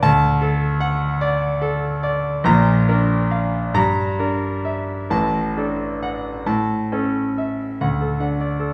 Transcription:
0.03 2.42 D2 medium
0.03 0.65 A5 loud
0.42 1.05 A4 medium
0.80 1.46 F#5 medium
1.21 1.87 D5 medium
1.62 2.28 A4 medium
2.03 2.45 D5 medium
2.44 3.69 A#1 medium
2.44 3.70 A#2 loud
2.44 3.14 A#5 loud
2.88 3.57 D4 medium
2.88 3.57 A#4 medium
3.31 3.74 F5 medium
3.74 5.06 G2 medium
3.74 4.46 A#5 loud
4.19 4.92 D4 medium
4.19 4.92 A#4 medium
4.65 5.11 E5 medium
5.10 6.41 A1 medium
5.10 6.41 A2 medium
5.10 5.83 A5 medium
5.57 6.27 D4 medium
5.57 6.28 A4 medium
6.03 6.46 F#5 medium
6.46 7.77 A2 medium
6.46 7.20 A5 medium
6.92 7.65 C#4 medium
6.92 7.65 A4 medium
7.38 7.81 E5 medium
7.81 8.73 D2 medium
7.81 8.12 F#5 medium
8.01 8.32 A4 medium
8.20 8.73 D4 soft
8.20 8.51 F#5 medium
8.40 8.71 D5 medium
8.60 8.73 A4 medium

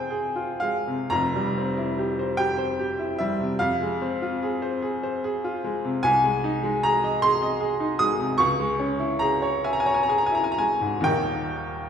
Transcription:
0.00 0.87 C3 soft
0.00 0.62 G#3 soft
0.00 1.12 C4 soft
0.00 0.36 F4 soft
0.00 0.10 G#4 medium
0.00 1.12 C5 medium
0.00 0.60 G5 medium
0.00 1.13 G#5 medium
0.00 1.10 A#5 medium
0.10 0.50 G#4 medium
0.36 0.76 F4 medium
0.60 1.01 G#3 soft
0.60 1.10 F5 medium
0.87 1.11 C3 medium
1.10 3.57 F1 medium
1.10 3.57 F2 medium
1.10 2.37 A#5 loud
1.35 1.69 G3 soft
1.57 1.90 C4 medium
1.77 2.09 E4 medium
1.98 2.30 G4 medium
2.19 2.51 C5 medium
2.37 2.71 G4 medium
2.37 3.19 G5 loud
2.58 2.91 C5 medium
2.79 3.12 G4 medium
2.99 3.32 E4 medium
3.19 3.53 G3 medium
3.19 3.60 E5 medium
3.40 3.61 C3 medium
3.59 6.00 F2 medium
3.59 6.04 F5 loud
3.81 4.13 G#3 medium
4.02 4.34 C4 medium
4.22 4.54 F4 medium
4.43 4.75 G#4 medium
4.62 4.95 C5 medium
4.82 5.16 G#4 medium
5.03 5.36 C5 medium
5.24 5.57 G#4 medium
5.44 5.77 F4 medium
5.64 5.96 G#3 medium
5.85 6.05 C3 medium
6.03 8.35 C2 medium
6.03 6.83 G#5 loud
6.24 6.56 G#3 medium
6.44 6.76 D#4 medium
6.63 6.95 G#3 medium
6.83 7.16 G#4 medium
6.83 7.23 A#5 loud
7.04 7.35 D#5 medium
7.22 7.54 G#4 medium
7.22 7.99 C6 loud
7.42 7.73 D#5 medium
7.60 7.92 G#4 medium
7.80 8.11 D#4 medium
7.99 8.31 G#3 medium
7.99 8.38 D#6 loud
8.20 8.39 C3 medium
8.38 11.04 C#2 medium
8.38 9.21 C#6 loud
8.59 8.92 G#3 medium
8.79 9.13 C#4 medium
8.99 9.34 E4 medium
9.19 9.56 G#4 medium
9.19 9.64 A#5 loud
9.42 9.78 C#5 medium
9.64 10.01 E5 medium
9.64 9.72 G#5 medium
9.73 9.80 A#5 medium
9.80 9.88 G#5 medium
9.86 10.24 C#5 medium
9.86 9.95 A#5 medium
9.94 10.03 G#5 medium
10.03 10.12 A#5 medium
10.08 10.48 G#4 medium
10.08 10.19 G#5 medium
10.18 10.28 A#5 medium
10.26 10.36 G#5 medium
10.32 10.72 E4 medium
10.32 10.44 A#5 medium
10.44 10.53 G#5 medium
10.52 10.61 A#5 medium
10.58 10.97 G#3 medium
10.58 11.06 G#5 medium
10.81 11.07 G#2 medium
11.00 11.89 D#1 medium
11.00 11.89 D#2 medium
11.00 11.89 D#3 medium
11.00 11.89 A#3 medium
11.00 11.89 D#4 medium
11.00 11.89 G5 loud

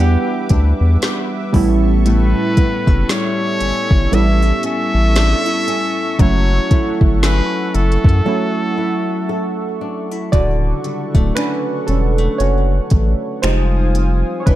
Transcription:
0.00 0.17 E2 medium
0.00 1.66 E3 medium
0.00 1.51 G3 medium
0.00 1.53 B3 medium
0.00 1.66 B3 medium
0.00 0.49 D4 medium
0.00 1.54 D4 medium
0.00 1.55 F#4 medium
0.00 0.99 G4 medium
0.00 1.02 G4 medium
0.00 1.50 B4 medium
0.00 6.15 E5 medium
0.00 1.55 F#5 medium
0.00 1.50 D6 medium
0.49 0.74 D2 medium
0.49 1.66 D4 medium
0.49 kick medium
0.49 closed hi-hat medium
0.81 0.97 E2 loud
1.02 2.09 G4 medium
1.02 snare loud
1.02 closed hi-hat medium
1.53 2.35 A1 loud
1.53 2.05 A2 medium
1.53 3.20 G3 medium
1.53 3.21 B3 medium
1.53 3.21 C#4 medium
1.53 3.22 E4 loud
1.53 10.29 A4 medium
1.53 10.29 C#6 medium
1.53 kick loud
1.53 open hi-hat medium
2.06 6.19 A2 medium
2.06 4.12 E4 medium
2.06 3.06 B4 loud
2.06 closed hi-hat medium
2.57 2.87 B3 medium
2.57 kick medium
2.57 closed hi-hat medium
2.87 3.04 F#1 medium
2.87 3.59 C#4 medium
2.87 kick loud
3.09 6.19 G3 medium
3.09 4.16 C#5 loud
3.09 snare loud
3.09 closed hi-hat medium
3.60 3.73 G1 soft
3.60 4.64 C#4 medium
3.60 closed hi-hat medium
3.91 4.08 G1 medium
3.91 kick loud
4.12 4.53 A1 medium
4.12 5.75 G3 medium
4.12 5.75 B3 medium
4.12 5.76 C#4 medium
4.12 4.42 D4 medium
4.12 5.76 E4 medium
4.12 6.67 A4 medium
4.12 4.65 E5 loud
4.12 closed hi-hat medium
4.42 5.15 E4 medium
4.63 5.67 C#4 medium
4.63 6.22 E5 loud
4.63 closed hi-hat medium
4.94 5.35 A1 medium
5.16 5.46 D4 medium
5.16 snare loud
5.16 closed hi-hat medium
5.46 6.31 E4 medium
5.67 7.22 C#4 medium
5.67 closed hi-hat medium
6.19 6.60 F#1 loud
6.19 7.82 F#3 medium
6.19 10.33 F#3 medium
6.19 7.82 A3 medium
6.19 7.83 C#4 medium
6.19 7.83 E4 medium
6.19 8.25 A4 medium
6.19 7.00 C#5 loud
6.19 10.29 E5 medium
6.19 10.29 F#5 medium
6.19 kick loud
6.19 closed hi-hat medium
6.71 7.73 E4 medium
6.71 kick medium
6.71 closed hi-hat medium
7.01 7.41 G1 medium
7.01 kick loud
7.23 10.73 C#4 medium
7.23 9.82 A4 medium
7.23 7.77 B4 loud
7.23 snare loud
7.23 closed hi-hat medium
7.74 7.98 F#1 medium
7.74 8.76 E4 medium
7.74 9.82 A4 medium
7.74 closed hi-hat medium
7.92 closed hi-hat soft
8.04 8.21 F#2 medium
8.04 kick loud
8.09 closed hi-hat soft
8.25 9.88 F#3 medium
8.25 9.89 A3 medium
8.25 9.89 C#4 medium
8.25 9.90 E4 medium
8.25 9.29 A4 medium
8.78 9.81 E4 medium
9.29 10.88 A4 medium
9.81 10.11 D4 medium
10.11 10.45 E4 medium
10.32 10.73 D1 loud
10.32 11.05 C#3 soft
10.32 13.55 D3 medium
10.32 11.05 F#3 medium
10.32 11.06 E4 medium
10.32 11.33 F#4 medium
10.32 13.40 A4 medium
10.32 11.39 D5 loud
10.32 13.40 F#5 medium
10.32 13.40 C#6 medium
10.32 kick loud
10.32 closed hi-hat medium
10.84 11.15 G3 medium
10.84 closed hi-hat soft
11.15 11.32 D1 medium
11.15 11.88 A3 soft
11.15 kick medium
11.35 12.39 C#4 medium
11.35 11.85 D4 medium
11.35 11.89 B4 loud
11.35 finger snap loud
11.35 closed hi-hat medium
11.87 12.29 E1 medium
11.87 12.18 G3 medium
11.87 12.37 C#4 medium
11.87 12.41 A4 medium
11.87 closed hi-hat medium
12.18 12.91 A3 soft
12.38 12.80 F#1 medium
12.38 13.55 C#4 medium
12.38 13.40 F#4 medium
12.38 13.46 C#5 medium
12.38 closed hi-hat medium
12.90 13.15 A1 loud
12.90 13.55 A3 medium
12.90 kick medium
12.90 closed hi-hat medium
13.42 14.24 F1 loud
13.42 14.46 F3 medium
13.42 14.15 G3 medium
13.42 14.16 G#3 medium
13.42 14.38 D#4 medium
13.42 14.43 C5 medium
13.42 14.46 C5 medium
13.42 14.46 F5 medium
13.42 14.46 G#5 medium
13.42 14.46 D#6 medium
13.42 finger snap loud
13.42 closed hi-hat medium
13.95 14.55 C4 medium
13.95 closed hi-hat medium
14.40 14.46 C#5 medium
14.46 14.55 E1 loud
14.46 14.55 E3 medium
14.46 14.55 D4 medium
14.46 14.55 B4 loud
14.46 14.55 B4 medium
14.46 14.55 E5 medium
14.46 14.55 D6 medium
14.46 kick loud
14.46 closed hi-hat medium

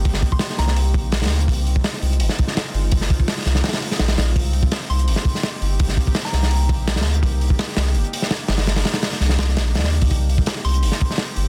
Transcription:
0.00 0.21 G1 medium
0.00 1.46 A#3 medium
0.00 7.19 C4 medium
0.00 1.46 D#4 medium
0.00 1.46 G4 medium
0.05 kick loud
0.05 open hi-hat medium
0.14 snare soft
0.22 kick medium
0.22 open hi-hat medium
0.32 0.38 C6 medium
0.32 kick loud
0.39 0.47 C6 medium
0.39 snare loud
0.39 open hi-hat medium
0.50 snare soft
0.58 0.96 C2 loud
0.58 0.86 A#5 medium
0.58 snare soft
0.58 open hi-hat medium
0.68 snare soft
0.76 open hi-hat medium
0.94 1.24 A#1 loud
0.94 kick loud
0.94 open hi-hat medium
1.12 snare loud
1.12 open hi-hat medium
1.22 1.47 D2 medium
1.22 snare medium
1.22 open hi-hat medium
1.26 snare medium
1.26 open hi-hat medium
1.31 open hi-hat medium
1.40 closed hi-hat soft
1.48 1.83 C2 loud
1.48 4.33 G#3 medium
1.48 4.33 D#4 medium
1.48 4.33 F4 medium
1.48 kick loud
1.48 open hi-hat medium
1.67 open hi-hat medium
1.76 kick medium
1.84 snare loud
1.84 open hi-hat medium
1.93 snare soft
2.02 2.22 C2 medium
2.02 open hi-hat medium
2.13 closed hi-hat soft
2.20 2.29 G1 loud
2.20 open hi-hat medium
2.29 snare soft
2.38 kick medium
2.38 open hi-hat medium
2.48 snare soft
2.57 snare loud
2.57 open hi-hat medium
2.74 3.09 G1 medium
2.74 open hi-hat medium
2.91 kick loud
2.91 open hi-hat medium
3.01 snare soft
3.10 kick loud
3.10 open hi-hat medium
3.20 kick medium
3.28 snare loud
3.28 open hi-hat loud
3.38 snare soft
3.45 3.62 C2 medium
3.45 snare soft
3.45 open hi-hat medium
3.55 snare medium
3.64 snare medium
3.64 open hi-hat medium
3.68 snare medium
3.68 open hi-hat medium
3.73 snare loud
3.73 open hi-hat medium
3.82 open hi-hat medium
3.91 snare soft
3.99 4.16 A#1 medium
3.99 snare loud
3.99 open hi-hat medium
4.08 snare loud
4.08 open hi-hat medium
4.18 4.34 A#1 medium
4.18 snare loud
4.18 open hi-hat medium
4.36 4.70 C2 loud
4.36 11.48 A#3 medium
4.36 11.48 D#4 medium
4.36 10.07 G4 medium
4.36 kick loud
4.36 open hi-hat medium
4.53 open hi-hat medium
4.63 kick loud
4.72 snare loud
4.72 open hi-hat medium
4.81 snare soft
4.90 5.09 C2 medium
4.90 5.40 C6 medium
4.90 open hi-hat medium
4.99 closed hi-hat soft
5.08 5.16 G1 medium
5.08 open hi-hat medium
5.16 snare soft
5.25 kick loud
5.25 open hi-hat medium
5.35 snare soft
5.43 snare loud
5.43 open hi-hat medium
5.62 5.96 G1 medium
5.62 open hi-hat medium
5.79 kick loud
5.79 open hi-hat loud
5.89 snare soft
5.97 kick loud
5.97 open hi-hat medium
6.07 kick loud
6.15 snare loud
6.15 open hi-hat loud
6.25 6.75 A#5 medium
6.25 snare soft
6.33 6.71 C2 medium
6.33 snare soft
6.33 open hi-hat medium
6.43 snare soft
6.51 open hi-hat medium
6.69 6.98 A#1 medium
6.69 kick loud
6.69 open hi-hat medium
6.87 snare loud
6.87 open hi-hat medium
6.96 7.22 D2 medium
6.96 snare loud
6.96 open hi-hat medium
7.01 snare loud
7.01 open hi-hat medium
7.05 open hi-hat medium
7.14 closed hi-hat soft
7.23 7.58 C2 loud
7.23 10.08 D4 medium
7.23 kick loud
7.23 open hi-hat medium
7.41 open hi-hat medium
7.50 kick medium
7.59 snare loud
7.59 open hi-hat medium
7.68 snare soft
7.77 7.96 C2 medium
7.77 snare loud
7.77 open hi-hat medium
7.87 snare soft
7.94 8.03 G1 loud
7.94 open hi-hat medium
8.04 closed hi-hat soft
8.13 open hi-hat medium
8.22 snare soft
8.31 snare loud
8.31 open hi-hat medium
8.48 8.84 G1 medium
8.48 snare loud
8.48 open hi-hat medium
8.58 snare loud
8.58 open hi-hat medium
8.66 snare loud
8.66 open hi-hat medium
8.76 snare loud
8.76 open hi-hat medium
8.85 snare loud
8.85 open hi-hat medium
8.94 snare loud
8.94 open hi-hat medium
9.03 snare loud
9.03 open hi-hat medium
9.13 snare soft
9.20 9.58 C2 medium
9.20 snare soft
9.20 open hi-hat medium
9.29 snare medium
9.38 snare loud
9.38 open hi-hat medium
9.48 snare soft
9.57 9.76 A#1 loud
9.57 snare loud
9.57 open hi-hat medium
9.75 10.09 D#2 loud
9.75 snare medium
9.75 open hi-hat medium
9.79 snare medium
9.79 open hi-hat medium
9.84 snare loud
9.84 open hi-hat medium
9.92 open hi-hat medium
10.01 kick loud
10.01 open hi-hat medium
10.11 10.45 C2 loud
10.11 11.48 C4 medium
10.11 11.48 G4 medium
10.11 kick loud
10.11 open hi-hat medium
10.29 open hi-hat medium
10.38 kick loud
10.46 snare loud
10.46 open hi-hat medium
10.56 snare soft
10.65 10.84 C2 medium
10.65 11.15 C6 medium
10.65 open hi-hat medium
10.74 closed hi-hat soft
10.83 10.91 G1 loud
10.83 open hi-hat medium
10.92 snare soft
11.00 kick loud
11.00 open hi-hat medium
11.11 snare soft
11.18 snare loud
11.18 open hi-hat medium
11.36 11.48 G1 medium
11.36 open hi-hat medium

